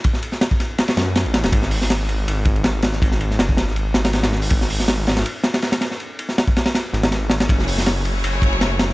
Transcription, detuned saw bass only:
\new Staff \with { instrumentName = "Detuned saw bass" } { \clef bass \time 4/4 \key fis \minor \tempo 4 = 161 r2 r8 fis,8. a,,8 e,,16 | gis,,2 gis,,2~ | gis,,4 fis,,8. gis,,8. gis,,4. | gis,,2 r2 |
r2 r8 gis,,4. | fis,,2 fis,,2 | }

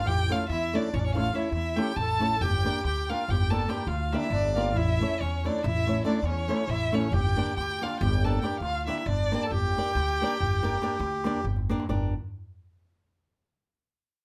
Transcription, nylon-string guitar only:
\new Staff \with { instrumentName = "Nylon-string guitar" } { \time 11/8 \tempo 4 = 139 r8 <a cis' e' a' cis''>8 r8 <a cis' e' a' cis''>8 r8 <a cis' e' a' cis''>8 <a cis' e' a' cis''>8 r8 <a cis' e' a' cis''>8 r8 <a cis' e' a' cis''>8 | r8 <bes d' g' bes' d''>8 r8 <bes d' g' bes' d''>8 r8 <bes d' g' bes' d''>8 <bes d' g' bes' d''>8 r8 <bes d' g' bes' d''>8 r8 <bes d' g' bes' d''>8 | r8 <a cis' e' a' cis''>8 r8 <a cis' e' a' cis''>8 r8 <a cis' e' a' cis''>8 <a cis' e' a' cis''>8 r8 <a cis' e' a' cis''>8 r8 <a cis' e' a' cis''>8 | r8 <bes d' g' bes' d''>8 r8 <bes d' g' bes' d''>8 r8 <bes d' g' bes' d''>8 <bes d' g' bes' d''>8 r8 <bes d' g' bes' d''>8 r8 <bes d' g' bes' d''>8 |
r8 <bes d' g' bes' d''>8 r8 <bes d' g' bes' d''>8 r8 <bes d' g' bes' d''>8 <bes d' g' bes' d''>8 r8 <bes d' g' bes' d''>8 r8 <bes d' g' bes' d''>8 | <d' g' bes' d''>8 r1 r4 | }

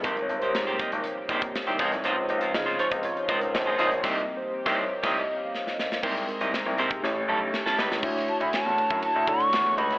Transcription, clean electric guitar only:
\new Staff \with { instrumentName = "Clean electric guitar" } { \time 4/4 \key aes \major \tempo 4 = 120 <bes ees' g' c''>16 r8 <bes ees' g' c''>16 r16 <bes ees' g' c''>16 <bes ees' g' ees''>16 r8. <bes ees' g' c''>16 r8 <bes ees' g' c''>16 <aes ees' f' c''>16 r16 | <aes ees' f' c''>16 r8 <aes ees' f' c''>16 r16 <aes ees' f' c''>16 <aes ees' f' des''>16 r8. <aes ees' f' c''>16 r8 <aes ees' f' c''>16 <aes ees' f' c''>16 r16 | <bes ees' g' c''>8 r8. <bes ees' g' c''>8 r16 <bes ees' g' ees''>8 r4. | <bes ees' g' c''>16 r8 <bes ees' g' ees''>16 r8 <bes ees' g' c''>16 r8. <g cis' e' a'>16 r8 <g cis' e' a'>16 <g cis' e' ces''>16 r16 |
\key d \lydian r1 | }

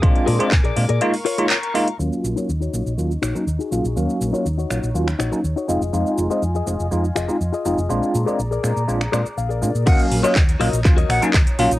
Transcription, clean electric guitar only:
\new Staff \with { instrumentName = "Clean electric guitar" } { \time 4/4 \key ees \dorian \tempo 4 = 122 << { r2 r8 f''8 bes''4 | r1 | r1 | r1 |
r2. \tuplet 3/2 { f''4 d''8 } | r1 | } \\ { r8 <aes' bes' d''>8 r16 <aes' bes' d''>16 r16 <aes' bes' d''>16 r8 <f' bes' des''>8 r4 | r8. <ees' ges' des''>16 r16 <ees' ges' des''>8. r8 <ees' ges' des''>16 r8 <ees' ges' aes'>8. | r8. <ees' ges' des''>16 r16 <ees' ges' des''>8. r8 <ees' ges' des''>16 r8 <ees' ges' des''>16 <f' aes' ees''>8~ | <f' aes' ees''>8 r16 <f' aes' ees''>16 r16 <f' aes' ees''>8. r8 <f' aes' ees''>16 r8 <f' aes' ees''>8. |
r8. <aes' bes' d''>16 r16 <aes' bes' d''>8. r8 <aes' bes' d''>16 r8 <aes' bes' d''>8. | <ges' bes' des'' ees''>8 r16 <ges' bes' des'' ees''>16 r8 <ges' bes' des'' ees''>8 r16 <ges' bes' des'' ees''>8. r4 | } >> }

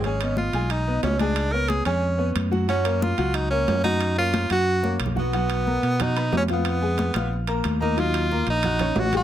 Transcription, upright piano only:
\new Staff \with { instrumentName = "Upright piano" } { \time 4/4 \key fis \major \tempo 4 = 182 <gis gis' gis''>8 <b b' dis''>4 <gis gis' gis''>4 <b b' dis''>4 <gis gis' gis''>8~ | <gis gis' gis''>8 <b b' cis''>4 <gis gis' gis''>4 <b b' cis''>4 <fis fis' fis''>8 | <fis fis' fis''>8 <ais ais' cis''>4 <fis fis' fis''>4 <ais ais' cis''>4 <fis fis' fis''>8~ | <fis fis' fis''>8 <ais ais' cis''>4 <fis fis' fis''>4 <ais ais' cis''>4 <fis fis' fis''>8 |
<fis fis' fis''>4 <b ais' ais''>4 <fis' fis'' fis'''>8 <b b' b''>4 <eis eis' eis''>8~ | <eis eis' eis''>8 <aes aes' aes''>4 <f' f'' f'''>4 <ais ais' ais''>4 <ais ais' ais''>8 | <fis dis' eis''>4 <ais ais' ais''>4 <fis' fis'' fis'''>8 <cis' cis'' cis'''>4 <g g' g''>8 | }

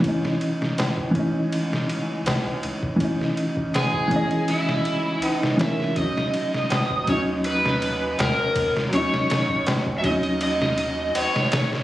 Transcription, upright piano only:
\new Staff \with { instrumentName = "Upright piano" } { \time 4/4 \key ees \phrygian \tempo 4 = 81 <fes des' ees'>4. <fes des' ees'>2~ <fes des' ees'>8 | <fes des' ees'>4. <fes des' ees''>2 <ees fes des'>8 | <ges des' ees'>4. <ges des' ees'>2~ <ges des' ees'>8 | <ges des' ees'>4. <ges des' ees'>2~ <ges des' ees'>8 | }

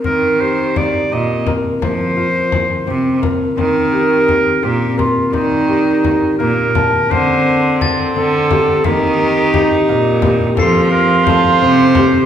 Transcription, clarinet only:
\new Staff \with { instrumentName = "Clarinet" } { \time 5/8 \key ees \lydian \tempo 4 = 86 bes'8 c''8 d''8 ees''8 r8 | c''2 r8 | bes'4. g'8 f'8 | ees'4. bes'4 |
c''4 r8 a'4 | g'2 r8 | a'8 bes'8 c''4. | }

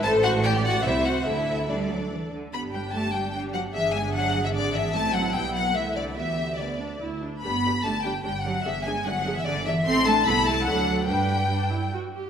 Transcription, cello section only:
\new Staff \with { instrumentName = "Cello section" } { \clef bass \time 3/4 \key g \major \tempo 4 = 148 a,2 c4 | d4 g8 fis8 e8 d8 | b8 g8 a8 g8 g8 fis8 | e8 gis8 fis8. e16 d8 e8 |
a8 fis8 g8 fis8 e8 d8 | e4 d4 r4 | b4 a8 g8 g8 fis8 | e8 gis8 fis8. e16 d8 e8 |
c'8 a8 b8 a8 fis4 | g2 r4 | }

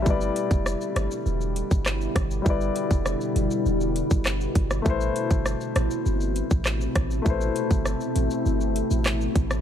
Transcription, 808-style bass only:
\new Staff \with { instrumentName = "808-style bass" } { \clef bass \time 4/4 \key a \minor \tempo 4 = 100 g,,8 r16 f,,8 r16 g,,16 r16 e,,8. g,,8. g,,8 | g,,8 r16 f,,8 r16 g,,16 r16 e,,8. g,,8. g,,8 | a,,8 r16 g,,8 r16 a,,16 r16 g,,8. a,,8. a,,8 | a,,8 r16 g,,8 r16 a,,16 r16 g,,8. a,,8. a,,8 | }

